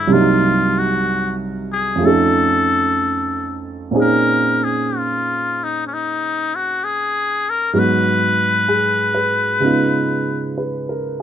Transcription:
Already playing: grand piano G2 D3 F3 G#3 B3, muted trumpet E4
0.07 grand piano C2 C3 F#3
0.12 grand piano A#3 D#4, muted trumpet F4
0.79 muted trumpet F#4
1.73 muted trumpet G#4
1.96 grand piano F2 F3
2.00 grand piano A3 C#4
2.05 grand piano D#4 A4, muted trumpet A4
3.91 grand piano A#2 A#3 C4 C#4 D#4
3.96 grand piano G#4
4.01 muted trumpet A#4
4.64 muted trumpet G#4
4.97 muted trumpet F4
5.64 muted trumpet D#4
5.87 muted trumpet C#4
5.94 muted trumpet D#4
6.56 muted trumpet F#4
6.84 muted trumpet G#4
7.50 muted trumpet A#4
7.73 grand piano G#2 F#3 G#3 B3 F#4, muted trumpet A#4
7.79 muted trumpet B4
8.68 grand piano G#4
9.15 grand piano B4
9.60 grand piano C#3 G#3 B3 D#4
9.65 grand piano F4
10.58 grand piano B4
10.89 grand piano A#4

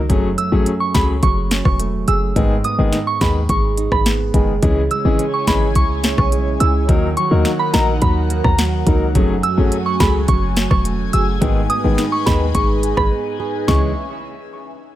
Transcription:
Already playing: 808-style bass C#2, nylon-string guitar F#3 A#3 D#4
0.09 808-style bass F#1, nylon-string guitar F#2, grand piano F#3 A3 C#4 G#4, kick, closed hi-hat
0.38 nylon-string guitar A3, synth bell E6, closed hi-hat
0.52 808-style bass A1, grand piano F#3 A3 C#4 G#4
0.66 nylon-string guitar C#4, closed hi-hat
0.80 synth bell C#6
0.94 808-style bass C#2, grand piano F#3 A3 C#4 G#4, nylon-string guitar G#4, synth bell B5, kick, snare, closed hi-hat
1.23 808-style bass F#1, nylon-string guitar F#3, synth bell C#6, kick, closed hi-hat
1.51 nylon-string guitar C#4, snare, closed hi-hat
1.65 808-style bass E1, synth bell C#6, kick, cross-stick
1.79 nylon-string guitar A3, closed hi-hat
2.08 808-style bass F#1, nylon-string guitar G#4, synth bell E6, closed hi-hat
2.36 808-style bass G#1, nylon-string guitar G#2, grand piano D#3 G#3 B3 G#4, kick, closed hi-hat
2.64 nylon-string guitar B3, synth bell D#6, closed hi-hat
2.78 808-style bass G#1, grand piano D#3 G#3 B3 G#4
2.93 nylon-string guitar D#4, snare, closed hi-hat
3.07 synth bell C#6
3.21 808-style bass D#2, grand piano D#3 G#3 B3 G#4, nylon-string guitar G#4, synth bell B5, kick, snare, closed hi-hat
3.49 808-style bass G#1, nylon-string guitar G#3, synth bell C#6, kick, closed hi-hat
3.77 nylon-string guitar D#4, closed hi-hat
3.92 808-style bass G#1, synth bell B5, kick, cross-stick
4.06 nylon-string guitar B3, snare, closed hi-hat
4.34 808-style bass F#1, grand piano D#3 G#3 B3 G#4, nylon-string guitar G#4, kick, closed hi-hat
4.62 808-style bass C#2, nylon-string guitar C#3, grand piano E3 G#3 C#4 G#4, analog synth pad E4 C#5 G#5, kick, closed hi-hat
4.91 nylon-string guitar G#3, synth bell E6, closed hi-hat
5.05 808-style bass G#1, grand piano E3 G#3 C#4 G#4
5.19 nylon-string guitar C#4, closed hi-hat
5.34 synth bell C#6
5.47 808-style bass G#1, grand piano E3 G#3 C#4 G#4, nylon-string guitar E4, synth bell B5, kick, snare, closed hi-hat
5.75 808-style bass C#2, nylon-string guitar G#3, synth bell C#6, kick, closed hi-hat
6.04 nylon-string guitar C#4, snare, closed hi-hat
6.18 808-style bass B1, synth bell C#6, kick, cross-stick
6.32 nylon-string guitar G#3, closed hi-hat
6.60 808-style bass C#2, nylon-string guitar E4, synth bell E6, closed hi-hat
6.88 808-style bass D#2, nylon-string guitar D#3, grand piano F#3 A#3 D#4 A#4, analog synth pad D#4 A#4 F#5, kick, closed hi-hat
7.17 nylon-string guitar F#3, synth bell C#6, closed hi-hat
7.31 808-style bass D#2, grand piano F#3 A#3 D#4 A#4
7.45 nylon-string guitar A#3, snare, closed hi-hat
7.59 synth bell B5
7.73 808-style bass A#1, grand piano F#3 A#3 D#4 A#4, nylon-string guitar D#4, synth bell A#5, snare, closed hi-hat
8.02 808-style bass D#2, nylon-string guitar F#3, synth bell B5, kick, closed hi-hat
8.30 nylon-string guitar A#3, closed hi-hat
8.44 808-style bass D#2, synth bell A#5, kick, cross-stick
8.58 nylon-string guitar F#3, snare, closed hi-hat
8.87 808-style bass C#2, grand piano F#3 A#3 D#4 A#4, nylon-string guitar D#4, kick, closed hi-hat
9.15 808-style bass F#1, nylon-string guitar F#2, grand piano F#3 A3 C#4 G#4, analog synth pad A3 F#4 G#5, kick, closed hi-hat
9.43 nylon-string guitar A3, synth bell E6, closed hi-hat
9.57 808-style bass A1, grand piano F#3 A3 C#4 G#4
9.72 nylon-string guitar C#4, closed hi-hat
9.86 synth bell C#6
10.00 808-style bass C#2, grand piano F#3 A3 C#4 G#4, nylon-string guitar G#4, synth bell B5, kick, snare, closed hi-hat
10.28 808-style bass F#1, nylon-string guitar F#3, synth bell C#6, kick, closed hi-hat
10.57 nylon-string guitar C#4, snare, closed hi-hat
10.71 808-style bass E1, synth bell C#6, kick, cross-stick
10.85 nylon-string guitar A3, closed hi-hat
11.13 808-style bass F#1, nylon-string guitar G#4, synth bell E6, closed hi-hat
11.41 808-style bass G#1, nylon-string guitar G#2, grand piano D#3 G#3 B3 G#4, analog synth pad D#4 B4, kick, closed hi-hat
11.70 nylon-string guitar B3, synth bell D#6, closed hi-hat
11.84 808-style bass G#1, grand piano D#3 G#3 B3 G#4
11.98 nylon-string guitar D#4, snare, closed hi-hat
12.12 synth bell C#6
12.26 808-style bass D#2, grand piano D#3 G#3 B3 G#4, nylon-string guitar G#4, synth bell B5, kick, snare, closed hi-hat
12.55 808-style bass G#1, nylon-string guitar G#3, synth bell C#6, kick, closed hi-hat
12.83 nylon-string guitar D#4, closed hi-hat
12.97 808-style bass G#1, synth bell B5, kick, cross-stick
13.11 nylon-string guitar B3
13.40 nylon-string guitar G#4
13.67 808-style bass C#2, nylon-string guitar C#3 G#3 C#4 E4 G#4, grand piano E3 G#3 C#4 G#4, synth bell C#6, snare, floor tom

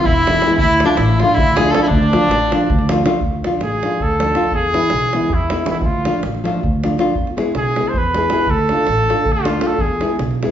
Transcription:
0.04 upright bass E1, trumpet E4, violin E4, davul low
0.27 nylon-string guitar E3 G#3 B3 E4, davul high
0.35 davul high
0.42 davul high
0.46 nylon-string guitar E3 G#3 B3 E4
0.51 davul high
0.58 upright bass D2, violin E4, trumpet E4, davul low
0.69 davul high
0.80 nylon-string guitar F3, davul high
0.84 nylon-string guitar A3 D4 F4, trumpet D4, violin D4
0.89 davul high
0.97 upright bass A1, violin E4, trumpet E4, davul high
1.08 davul high
1.20 nylon-string guitar F3 A3, violin F4, trumpet F4, davul high
1.24 nylon-string guitar D4 F4
1.29 davul high
1.34 upright bass D2, violin E4, trumpet E4, davul low
1.56 nylon-string guitar F3 A3 D4, violin G#4, trumpet G#4, davul high
1.60 nylon-string guitar F4
1.67 violin A4, davul high
1.73 nylon-string guitar F3 A3 D4 F4, trumpet A4, davul high
1.82 violin E4, trumpet E4, davul high
1.88 upright bass D2, violin D4, trumpet D4, davul low
2.02 davul high
2.13 nylon-string guitar F3 A3 D4 F4, davul high
2.29 upright bass A1, davul high
2.52 nylon-string guitar F3 A3 D4 F4, davul high
2.61 davul high
2.70 upright bass D2, davul low
2.79 davul high
2.89 nylon-string guitar F3 A3 D4 F4, davul high
3.05 nylon-string guitar F3 A3 D4 F4, davul high
3.21 upright bass D2, davul low
3.44 nylon-string guitar F3 A3 D4 F4, davul high
3.52 davul high
3.61 upright bass A1, trumpet G#4, davul high
3.72 davul high
3.83 nylon-string guitar F3 A3 D4 F4, davul high
3.91 davul high
4.00 upright bass D2, trumpet A4, davul low
4.19 nylon-string guitar F3 A3 D4 F4, davul high
4.35 nylon-string guitar F3 A3 D4 F4, davul high
4.44 davul high
4.52 upright bass E2, trumpet G#4, davul low
4.73 nylon-string guitar E3 G#3 B3 E4, davul high
4.83 davul high
4.90 upright bass B1, davul high
5.02 davul high
5.13 nylon-string guitar E3 G#3 B3 E4, davul high
5.22 davul high
5.30 upright bass E2, davul low
5.34 trumpet E4
5.50 nylon-string guitar E3 G#3 B3 E4, davul high
5.66 nylon-string guitar E3 G#3 B3 E4, davul high
5.70 trumpet E4
5.75 davul high
5.81 upright bass D2, trumpet F4, davul low
6.05 nylon-string guitar F3 A3 D4 F4, davul high
6.14 davul high
6.23 upright bass A1, davul high
6.35 davul high
6.44 nylon-string guitar F3 A3 D4 F4, davul high
6.54 davul high
6.63 upright bass D2, davul low
6.83 nylon-string guitar F3 A3 D4 F4, davul high
6.98 nylon-string guitar F3 A3 D4 F4, davul high
7.07 davul high
7.15 upright bass E2, davul low
7.27 davul high
7.37 nylon-string guitar G#3 B3 E4 G#4, davul high
7.46 davul high
7.55 upright bass B1, trumpet G#4, davul high
7.76 nylon-string guitar G#3 B3 E4 G#4, davul high
7.86 trumpet C5, davul high
7.94 upright bass E2, trumpet B4, davul low
8.14 nylon-string guitar G#3 B3 E4 G#4, davul high
8.30 nylon-string guitar G#3 B3 E4 G#4, davul high
8.47 upright bass D2, trumpet A4, davul low
8.69 nylon-string guitar A3 D4 F4, davul high
8.74 nylon-string guitar A4
8.87 upright bass A1, davul high
9.00 davul high
9.09 nylon-string guitar A3 D4 F4 A4, davul high
9.19 davul high
9.25 upright bass D2, davul low
9.32 trumpet F4
9.45 nylon-string guitar A3 D4 F4 A4, davul high
9.61 nylon-string guitar A3 D4 F4 A4, davul high
9.67 trumpet A4, davul high
9.78 upright bass E2, trumpet G#4, davul low
10.00 nylon-string guitar G#3 B3 E4 G#4, davul high
10.10 davul high
10.19 upright bass B1, davul high
10.31 davul high
10.43 nylon-string guitar G#3 B3 E4 G#4, davul high

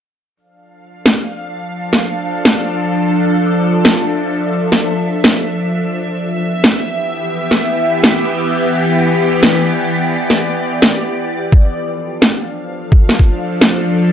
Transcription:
0.36 synth drone F3 D4 A4 F5
1.06 snare
1.93 snare
2.45 snare
3.15 synth drone E5
3.85 snare
4.72 snare
5.24 snare
5.94 synth drone E3 B3 G4 E5
6.64 snare
7.51 snare
8.04 snare
8.73 synth drone D5
9.43 snare
10.30 snare
10.82 snare
11.52 synth drone F3 D4 A4 F5, kick
12.22 snare
12.92 kick
13.09 snare
13.19 kick
13.61 snare

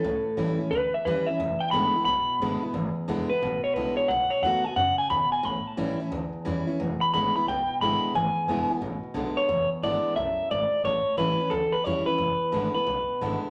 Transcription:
Already playing: clean electric guitar A4
0.04 upright bass C#2, steel-string acoustic guitar A2
0.25 muted upright bass stroke
0.37 upright bass A1, steel-string acoustic guitar E3 G3 C#4 E4
0.59 steel-string acoustic guitar C#4 E4, muted upright bass stroke
0.71 upright bass D2, clean electric guitar B4
0.94 clean electric guitar E5, muted upright bass stroke
1.05 upright bass D#2, steel-string acoustic guitar E3 G3 C#4 E4, clean electric guitar B4
1.26 steel-string acoustic guitar C#4 E4, clean electric guitar E5, muted upright bass stroke
1.39 upright bass E1, steel-string acoustic guitar E2
1.60 clean electric guitar G5, muted upright bass stroke
1.71 upright bass G#1, steel-string acoustic guitar D3 G#3 B3 E4, clean electric guitar B5
1.94 steel-string acoustic guitar B3 E4, muted upright bass stroke
2.05 upright bass B1, steel-string acoustic guitar B2, clean electric guitar B5
2.28 muted upright bass stroke
2.39 upright bass G#1, steel-string acoustic guitar D3 G#3 B3 E4
2.62 steel-string acoustic guitar B3 E4, muted upright bass stroke
2.73 upright bass G#1, steel-string acoustic guitar E2
2.96 muted upright bass stroke
3.08 upright bass E1, steel-string acoustic guitar D3 G#3 B3 E4
3.30 steel-string acoustic guitar B3 E4, clean electric guitar B4, muted upright bass stroke
3.42 upright bass A1, steel-string acoustic guitar B2
3.64 clean electric guitar C#5, muted upright bass stroke
3.74 upright bass B1, steel-string acoustic guitar D3 G#3 B3 E4, clean electric guitar B4
3.97 clean electric guitar C#5, muted upright bass stroke
4.08 upright bass B1, steel-string acoustic guitar B2, clean electric guitar F#5
4.30 clean electric guitar C#5, muted upright bass stroke
4.42 upright bass D#2, steel-string acoustic guitar D#3 A3 B3, clean electric guitar F#5
4.46 steel-string acoustic guitar F#4
4.64 steel-string acoustic guitar B3 F#4, clean electric guitar G#5, muted upright bass stroke
4.76 upright bass F#2, steel-string acoustic guitar C#3, clean electric guitar F#5
4.98 clean electric guitar G#5, muted upright bass stroke
5.10 upright bass D#2, steel-string acoustic guitar B2, clean electric guitar B5
5.32 clean electric guitar G#5, muted upright bass stroke
5.43 upright bass A1, steel-string acoustic guitar A2, clean electric guitar B5
5.66 clean electric guitar A5, muted upright bass stroke
5.77 upright bass A1, steel-string acoustic guitar E3 G3 C#4 E4
6.00 steel-string acoustic guitar C#4 E4, muted upright bass stroke
6.12 upright bass D2, steel-string acoustic guitar E2
6.33 muted upright bass stroke
6.45 upright bass E2, steel-string acoustic guitar E3 G3 C#4 E4
6.67 steel-string acoustic guitar C#4 E4
6.80 upright bass E1, steel-string acoustic guitar E2
7.01 clean electric guitar B5, muted upright bass stroke
7.13 upright bass G#1, steel-string acoustic guitar D3 G#3 B3 E4, clean electric guitar B5
7.35 steel-string acoustic guitar B3 E4, clean electric guitar B5, muted upright bass stroke
7.47 upright bass B1, steel-string acoustic guitar B2, clean electric guitar G5
7.68 muted upright bass stroke
7.80 upright bass G#1, steel-string acoustic guitar D3 G#3 B3 E4, clean electric guitar B5
8.03 muted upright bass stroke
8.14 upright bass G#1, steel-string acoustic guitar E2, clean electric guitar G#5
8.34 muted upright bass stroke
8.47 upright bass E1, steel-string acoustic guitar D3 G#3 B3 E4
8.69 steel-string acoustic guitar B3 E4, muted upright bass stroke
8.81 upright bass A1, steel-string acoustic guitar B2
9.03 muted upright bass stroke
9.14 upright bass B1, steel-string acoustic guitar D3 G#3 B3 E4
9.36 clean electric guitar C#5, muted upright bass stroke
9.48 upright bass E1, steel-string acoustic guitar E2
9.71 muted upright bass stroke
9.83 upright bass G#1, steel-string acoustic guitar D3 G#3 B3 E4, clean electric guitar D5
10.16 upright bass B1, steel-string acoustic guitar F#2, clean electric guitar E5
10.39 muted upright bass stroke
10.51 upright bass G#1, steel-string acoustic guitar G#2, clean electric guitar D5
10.73 muted upright bass stroke
10.84 upright bass A1, steel-string acoustic guitar A2, clean electric guitar C#5
11.07 muted upright bass stroke
11.17 upright bass A1, steel-string acoustic guitar E3 G3 C#4 E4, clean electric guitar B4
11.39 steel-string acoustic guitar C#4 E4, muted upright bass stroke
11.50 upright bass D2, steel-string acoustic guitar E2, clean electric guitar A4
11.72 clean electric guitar B4, muted upright bass stroke
11.84 upright bass E2, steel-string acoustic guitar E3 G3 C#4 E4, clean electric guitar C#5
12.06 steel-string acoustic guitar C#4 E4, clean electric guitar B4, muted upright bass stroke
12.18 upright bass E1, steel-string acoustic guitar E2
12.40 muted upright bass stroke
12.52 upright bass G#1, steel-string acoustic guitar D3 G#3 B3 E4
12.74 steel-string acoustic guitar B3 E4, clean electric guitar B4, muted upright bass stroke
12.87 upright bass B1, steel-string acoustic guitar B2
13.08 muted upright bass stroke
13.21 upright bass G#1, steel-string acoustic guitar D3 G#3 B3 E4
13.43 muted upright bass stroke

